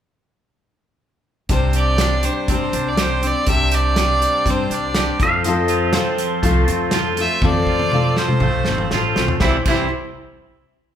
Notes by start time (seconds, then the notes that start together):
1.49 C2 C3 G3 C4 D4 G4 C5, kick, closed hi-hat
1.73 G4 D5, closed hi-hat
1.98 G3 C4 D4, snare, closed hi-hat
2.02 G4
2.23 G3 C4 D4 G4 C5, closed hi-hat
2.48 G2 C3 G3 C4 D4 G4 C5, kick, closed hi-hat
2.73 C2 D4, closed hi-hat
2.88 D5
2.96 G3 C4 D4 G4, snare, closed hi-hat
3.02 C5
3.21 C4 D4 G4, closed hi-hat
3.27 D5
3.46 C2 C3 G3 C4 D4 G4 E5, kick, closed hi-hat
3.71 G4 D5, closed hi-hat
3.96 G3 C4 D4 G4, snare, closed hi-hat
4.22 G3, closed hi-hat
4.46 G2 C3 G3 C4 D4 G4, kick, closed hi-hat
4.50 C5
4.70 C2 D4, closed hi-hat
4.75 D5
4.95 G3 C4, snare, closed hi-hat
4.99 D4 G4
5.19 F2 C4 F4 A4 C5 F5, kick, closed hi-hat
5.25 C4
5.44 F2 F3 C4 F4 D#5, closed hi-hat
5.48 A4
5.68 F4, closed hi-hat
5.93 F3 C4 F4 C5, snare, closed hi-hat
5.97 A4
6.18 F3, closed hi-hat
6.42 C2 F3 A3 C4 F4 A4, kick, closed hi-hat
6.67 F2 C4 F4, closed hi-hat
6.91 F3 C4, snare, closed hi-hat
6.96 F4 A4
7.17 A3 F4 A4 E5, closed hi-hat
7.22 C4
7.42 F2 F3 C4 F4 A4, kick, high tom
7.46 D5
7.67 F4, kick
7.80 high tom
7.91 F3 C4 F4 A4, mid tom
8.16 F3 C5, snare
8.29 mid tom
8.40 C2 F3 A3 C4 F4 A4, kick, mid tom
8.65 G1 C4, snare
8.78 mid tom
8.91 A1 F3 C4 F4 A4, snare
9.16 B1 A3 F4 A4, snare
9.20 C4
9.28 floor tom
9.40 C2 C3 E3 G3 C4 E4 G4 C5, kick, snare
9.44 C4 E4 G4
9.65 C2 C3 E3 G3 C4 E4 G4 C5, kick, crash